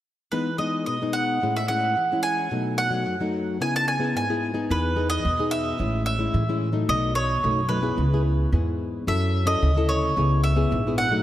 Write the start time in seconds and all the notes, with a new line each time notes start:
0.32 E3 G#3 B3 D#4 B4
0.58 G#3 B3 D#4 D#5
0.86 B2 D#5
1.02 G#3 B3 D#4
1.13 F#5
1.42 A2 G#3 C#4 E4
1.56 E5
1.68 G#3 C#4 E4 F#5
2.12 G#3 C#4 E4
2.23 G#5
2.51 B2 F#3 A3 D#4
2.78 F#5
2.90 F#3 A3 D#4
3.06 F#2
3.20 F#3 A3 D#4
3.60 C#3 B3 E4 G#4 G#5
3.76 A5
3.88 G#5
3.99 B3 E4 G#4
4.15 G#2 G#5
4.29 B3 E4 G#4
4.54 B3 D#4 G#4
4.70 E2 E3 B4
4.95 B3 D#4 G#4
5.10 D#5
5.24 E2 B2
5.39 B3 D#4 G#4
5.51 E5
5.79 A1 A2 G#3 C#4 E4
6.06 E5
6.19 G#3 C#4 E4
6.34 A2 E3
6.49 G#3 C#4 E4
6.72 F#3 A3 D#4
6.89 B1 B2 D#5
7.15 C#5
7.43 B1 F#2 F#3 A3 D#4
7.69 F#3 A3 D#4 B4
7.82 B3 E4 G#4
7.98 C#2 C#3
8.13 B3 E4 G#4
8.52 E2 G#2 B3 E4 G#4
9.07 F#2 F#3 C#4 E4 A4 E5
9.46 C#4 E4 A4 D#5
9.62 D2 C#3
9.76 C#4 E4 A4
9.89 C#5
10.17 C#2 C#3 B3 E4 G#4
10.44 E5
10.56 B3 E4 G#4
10.72 A#1 G#2
10.87 B3 E4 G#4
10.98 F#5
11.11 F#3 A3 D#4